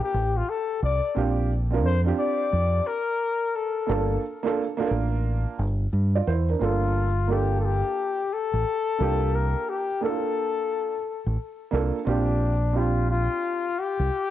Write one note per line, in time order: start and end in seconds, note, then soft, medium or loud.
0.00 0.12 A#3 medium
0.00 0.13 D4 medium
0.00 0.14 F4 medium
0.00 0.38 G4 medium
0.00 0.14 A#4 medium
0.14 0.41 A1 medium
0.37 0.51 F4 medium
0.49 0.83 A4 loud
0.82 1.00 C2 medium
0.82 1.14 D5 loud
1.15 1.85 A#1 loud
1.15 1.48 C4 medium
1.15 1.48 D4 medium
1.15 1.49 F4 medium
1.15 1.49 G4 medium
1.71 1.89 C4 medium
1.71 1.89 D4 medium
1.71 1.90 F4 medium
1.71 1.90 A#4 medium
1.85 2.11 F2 medium
1.85 2.01 C5 loud
2.04 2.85 C4 medium
2.04 2.85 D4 medium
2.04 2.86 F4 medium
2.04 2.87 G4 medium
2.19 2.88 D5 loud
2.53 2.80 F2 medium
2.87 3.57 A#4 loud
3.55 4.23 A4 medium
3.87 4.16 G1 loud
3.87 4.20 A#3 medium
3.87 4.21 D4 medium
3.87 4.21 F4 medium
3.87 4.22 A4 medium
4.43 4.61 A#3 medium
4.43 4.62 D4 medium
4.43 4.62 F4 medium
4.43 4.63 A4 loud
4.77 5.58 A#3 medium
4.77 5.58 D4 medium
4.77 5.59 F4 medium
4.77 4.84 A4 medium
4.87 5.45 A1 medium
4.87 5.63 A#4 loud
5.59 5.86 G1 medium
5.93 6.20 G2 loud
6.15 6.27 F4 medium
6.15 6.27 D5 medium
6.27 6.54 E2 medium
6.27 6.49 E4 medium
6.27 6.48 C5 medium
6.50 6.59 D4 soft
6.50 6.82 A#4 medium
6.59 7.81 G1 loud
6.59 7.05 A#3 medium
6.59 7.06 D4 medium
6.59 7.06 F4 medium
6.59 7.33 F4 medium
6.59 7.07 A4 medium
7.28 8.18 A#3 medium
7.28 8.18 D4 medium
7.28 8.19 F4 medium
7.28 7.60 G4 medium
7.28 8.19 A4 medium
7.61 7.67 A4 medium
7.65 8.35 G4 medium
8.33 9.36 A4 loud
8.53 8.63 A1 medium
8.98 9.54 C2 medium
8.98 9.85 A#3 medium
8.98 9.86 D4 medium
8.98 9.86 F4 medium
8.98 9.87 G4 medium
9.35 9.71 A#4 medium
9.69 10.05 G4 medium
10.01 10.90 A#3 medium
10.01 10.91 D4 medium
10.01 10.11 E4 medium
10.01 11.39 A4 loud
10.01 10.92 A4 medium
10.10 10.95 F4 medium
11.26 11.36 A1 medium
11.71 11.90 C2 medium
11.71 11.97 A#3 medium
11.71 11.97 D4 medium
11.71 11.98 F4 medium
11.71 11.98 A4 medium
12.05 13.27 A#1 loud
12.05 12.50 C4 medium
12.05 12.51 D4 medium
12.05 12.51 F4 medium
12.05 12.52 G4 medium
12.09 12.79 D4 medium
12.73 13.63 C4 medium
12.73 13.64 D4 medium
12.73 13.64 F4 medium
12.73 13.10 F4 medium
12.73 13.65 G4 medium
13.11 13.80 F4 loud
13.79 14.30 G4 loud
13.99 14.09 C2 medium